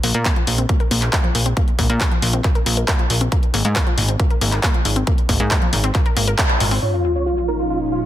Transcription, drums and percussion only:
0.03 open hi-hat
0.14 closed hi-hat
0.25 kick, clap, closed hi-hat
0.36 closed hi-hat
0.47 open hi-hat
0.58 closed hi-hat
0.69 kick, closed hi-hat
0.80 closed hi-hat
0.91 open hi-hat
1.02 clap, closed hi-hat
1.13 kick, clap, closed hi-hat
1.24 closed hi-hat
1.35 open hi-hat
1.46 closed hi-hat
1.57 kick, closed hi-hat
1.68 closed hi-hat
1.79 kick, open hi-hat
1.90 closed hi-hat
2.01 kick, clap, closed hi-hat
2.12 closed hi-hat
2.22 open hi-hat
2.33 closed hi-hat
2.44 kick, clap, closed hi-hat
2.55 closed hi-hat
2.66 open hi-hat
2.77 closed hi-hat
2.88 kick, clap, closed hi-hat
2.99 closed hi-hat
3.10 open hi-hat
3.21 closed hi-hat
3.32 kick, closed hi-hat
3.43 closed hi-hat
3.54 open hi-hat
3.65 closed hi-hat
3.76 kick, clap, closed hi-hat
3.87 closed hi-hat
3.98 open hi-hat
4.09 closed hi-hat
4.20 kick, closed hi-hat
4.30 closed hi-hat
4.41 open hi-hat
4.52 clap, closed hi-hat
4.63 kick, clap, closed hi-hat
4.74 closed hi-hat
4.85 open hi-hat
4.96 closed hi-hat
5.07 kick, closed hi-hat
5.18 closed hi-hat
5.29 kick, open hi-hat
5.40 closed hi-hat
5.51 kick, clap, closed hi-hat
5.62 closed hi-hat
5.73 open hi-hat
5.84 closed hi-hat
5.95 kick, clap, closed hi-hat
6.06 closed hi-hat
6.17 open hi-hat
6.28 closed hi-hat
6.38 kick, clap, closed hi-hat
6.49 closed hi-hat
6.60 open hi-hat
6.71 open hi-hat

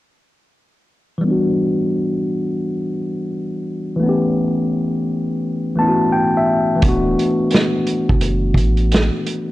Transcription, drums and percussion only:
6.82 kick, closed hi-hat
7.19 closed hi-hat
7.50 snare, closed hi-hat
7.87 closed hi-hat
8.09 kick
8.21 closed hi-hat
8.54 kick, closed hi-hat
8.77 closed hi-hat
8.92 snare, closed hi-hat
9.26 closed hi-hat

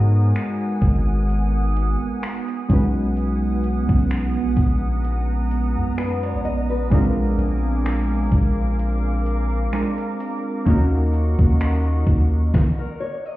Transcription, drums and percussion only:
0.35 finger snap, closed hi-hat
0.82 kick, closed hi-hat
1.30 closed hi-hat
1.77 closed hi-hat
2.23 finger snap, closed hi-hat
2.48 closed hi-hat
2.70 kick, closed hi-hat
3.17 closed hi-hat
3.64 closed hi-hat
3.89 kick
4.10 finger snap, closed hi-hat
4.57 kick, closed hi-hat
5.05 closed hi-hat
5.51 closed hi-hat
5.98 finger snap, closed hi-hat
6.23 closed hi-hat
6.45 closed hi-hat
6.92 kick, closed hi-hat
7.39 closed hi-hat
7.85 finger snap, closed hi-hat
8.32 kick, closed hi-hat
8.79 closed hi-hat
9.26 closed hi-hat
9.73 finger snap, closed hi-hat
9.98 closed hi-hat
10.20 closed hi-hat
10.66 kick, closed hi-hat
11.14 closed hi-hat
11.39 kick
11.60 finger snap, closed hi-hat
12.07 kick, closed hi-hat
12.54 kick, snare

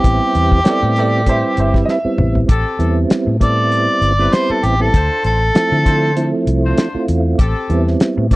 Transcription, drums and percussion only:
0.04 kick, closed hi-hat
0.35 closed hi-hat
0.52 kick
0.65 snare, closed hi-hat
0.96 closed hi-hat
1.26 kick, closed hi-hat
1.57 closed hi-hat
1.74 kick, snare
1.88 snare
2.18 mid tom
2.35 floor tom
2.49 kick, closed hi-hat
2.80 closed hi-hat
3.10 snare, closed hi-hat
3.41 kick, closed hi-hat
3.72 closed hi-hat
4.02 closed hi-hat
4.33 snare, closed hi-hat
4.63 closed hi-hat
4.94 kick, closed hi-hat
5.24 closed hi-hat
5.55 snare, closed hi-hat
5.86 kick, closed hi-hat
6.17 closed hi-hat
6.47 closed hi-hat
6.78 snare, closed hi-hat
7.08 closed hi-hat
7.39 kick, closed hi-hat
7.70 closed hi-hat
7.88 snare
8.00 snare, closed hi-hat
8.31 kick, snare, closed hi-hat

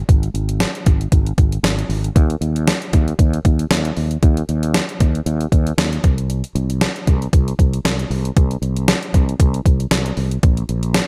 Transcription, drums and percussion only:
0.09 kick, closed hi-hat
0.23 closed hi-hat
0.35 closed hi-hat
0.49 closed hi-hat
0.60 snare, closed hi-hat, tambourine
0.75 closed hi-hat
0.86 kick, closed hi-hat
1.01 closed hi-hat
1.12 kick, closed hi-hat
1.27 closed hi-hat
1.38 kick, closed hi-hat
1.52 closed hi-hat
1.64 snare, closed hi-hat, tambourine
1.79 closed hi-hat
1.90 open hi-hat
2.04 closed hi-hat
2.16 kick, closed hi-hat
2.30 closed hi-hat
2.42 closed hi-hat
2.56 closed hi-hat
2.67 snare, closed hi-hat, tambourine
2.82 closed hi-hat
2.93 kick, closed hi-hat
3.08 closed hi-hat
3.19 kick, closed hi-hat
3.33 closed hi-hat
3.45 kick, closed hi-hat
3.59 closed hi-hat
3.71 snare, closed hi-hat, tambourine
3.85 closed hi-hat
3.97 open hi-hat
4.11 closed hi-hat
4.23 kick, closed hi-hat
4.37 closed hi-hat
4.49 closed hi-hat
4.63 closed hi-hat
4.74 snare, closed hi-hat, tambourine
4.89 closed hi-hat
5.00 kick, closed hi-hat
5.15 closed hi-hat
5.26 closed hi-hat
5.41 closed hi-hat
5.52 kick, closed hi-hat
5.67 closed hi-hat
5.78 snare, closed hi-hat, tambourine
5.93 closed hi-hat
6.04 kick, closed hi-hat
6.18 closed hi-hat
6.30 closed hi-hat
6.44 closed hi-hat
6.56 closed hi-hat
6.70 closed hi-hat
6.81 snare, closed hi-hat, tambourine
6.96 closed hi-hat
7.07 kick, closed hi-hat
7.22 closed hi-hat
7.33 kick, closed hi-hat
7.48 closed hi-hat
7.59 kick, closed hi-hat
7.73 closed hi-hat
7.85 snare, closed hi-hat, tambourine
7.99 closed hi-hat
8.11 open hi-hat
8.25 closed hi-hat
8.37 kick, closed hi-hat
8.51 closed hi-hat
8.63 closed hi-hat
8.77 closed hi-hat
8.88 snare, closed hi-hat, tambourine
9.03 closed hi-hat
9.14 kick, closed hi-hat
9.29 closed hi-hat
9.40 kick, closed hi-hat
9.54 closed hi-hat
9.66 kick, closed hi-hat
9.80 closed hi-hat
9.91 snare, closed hi-hat, tambourine
10.06 closed hi-hat
10.17 open hi-hat
10.31 closed hi-hat
10.43 kick, closed hi-hat
10.57 closed hi-hat
10.69 closed hi-hat
10.83 closed hi-hat
10.94 snare, closed hi-hat, tambourine

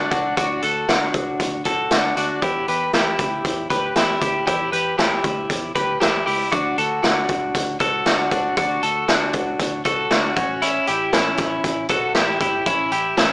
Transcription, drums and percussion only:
0.11 kick, closed hi-hat
0.37 kick, closed hi-hat
0.62 closed hi-hat
0.89 snare, closed hi-hat
1.14 kick, closed hi-hat
1.40 kick, closed hi-hat
1.65 kick, closed hi-hat
1.91 snare, closed hi-hat
2.17 closed hi-hat
2.42 kick, closed hi-hat
2.68 closed hi-hat
2.93 snare, closed hi-hat
3.19 kick, closed hi-hat
3.45 kick, closed hi-hat
3.70 kick, closed hi-hat
3.96 snare, closed hi-hat
4.22 kick, closed hi-hat
4.47 kick, closed hi-hat
4.73 closed hi-hat
4.99 snare, closed hi-hat
5.24 kick, closed hi-hat
5.50 kick, closed hi-hat
5.75 kick, closed hi-hat
6.01 snare, closed hi-hat
6.27 open hi-hat
6.52 kick, closed hi-hat
6.78 closed hi-hat
7.04 snare, closed hi-hat
7.28 kick, closed hi-hat
7.55 kick, closed hi-hat
7.80 kick, closed hi-hat
8.06 snare, closed hi-hat
8.31 kick, closed hi-hat
8.57 kick, closed hi-hat
8.83 closed hi-hat
9.08 snare, closed hi-hat
9.33 kick, closed hi-hat
9.59 kick, closed hi-hat
9.85 kick, closed hi-hat
10.11 snare, closed hi-hat
10.37 kick, closed hi-hat
10.62 closed hi-hat
10.87 closed hi-hat
11.13 snare, closed hi-hat
11.37 kick, snare, closed hi-hat
11.64 kick, closed hi-hat
11.89 kick, closed hi-hat
12.15 snare, closed hi-hat
12.41 kick, closed hi-hat
12.66 kick, closed hi-hat
12.92 closed hi-hat
13.17 snare, closed hi-hat

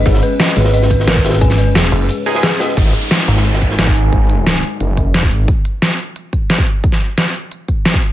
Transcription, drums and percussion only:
0.05 kick, closed hi-hat
0.14 snare
0.23 closed hi-hat, ride
0.39 snare, closed hi-hat
0.48 snare
0.57 snare, closed hi-hat, ride
0.64 snare
0.74 closed hi-hat
0.82 snare
0.91 kick, closed hi-hat, ride
1.00 snare
1.07 snare, closed hi-hat
1.16 kick, closed hi-hat
1.25 snare, closed hi-hat, ride
1.28 snare, closed hi-hat
1.33 snare, closed hi-hat
1.41 kick, closed hi-hat
1.50 snare
1.58 closed hi-hat, ride
1.75 snare, closed hi-hat
1.84 snare
1.92 closed hi-hat, ride
2.09 closed hi-hat
2.26 snare, closed hi-hat, open hi-hat, ride
2.35 snare
2.43 snare, closed hi-hat
2.52 closed hi-hat
2.60 snare, closed hi-hat, ride
2.68 snare
2.77 kick, closed hi-hat
2.85 snare
2.94 closed hi-hat
3.11 snare, closed hi-hat
3.19 snare
3.28 snare, closed hi-hat
3.37 snare
3.45 closed hi-hat
3.53 snare
3.61 kick, closed hi-hat
3.70 snare
3.79 snare, closed hi-hat
3.87 kick, closed hi-hat
3.96 closed hi-hat
4.13 kick, closed hi-hat
4.30 closed hi-hat
4.47 snare, closed hi-hat
4.63 closed hi-hat
4.81 closed hi-hat
4.97 kick, closed hi-hat
5.14 snare, closed hi-hat
5.23 kick
5.31 closed hi-hat
5.48 kick, closed hi-hat
5.65 closed hi-hat
5.82 snare, closed hi-hat
5.99 closed hi-hat
6.16 closed hi-hat
6.33 kick, closed hi-hat
6.50 snare, closed hi-hat
6.58 kick
6.67 closed hi-hat
6.84 kick, closed hi-hat
6.92 snare
7.01 closed hi-hat
7.18 snare, closed hi-hat
7.35 closed hi-hat
7.52 closed hi-hat
7.68 kick, closed hi-hat
7.85 snare, closed hi-hat
7.94 kick
8.02 closed hi-hat

